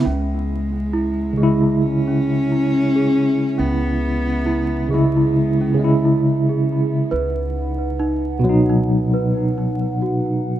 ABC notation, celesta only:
X:1
M:4/4
L:1/16
Q:"Swing 16ths" 1/4=68
K:C#m
V:1 name="Celesta"
C4 E2 G E z C z E z G z2 | C4 E2 G E z C z E z G z2 | B4 D2 F D z B z D z F z2 |]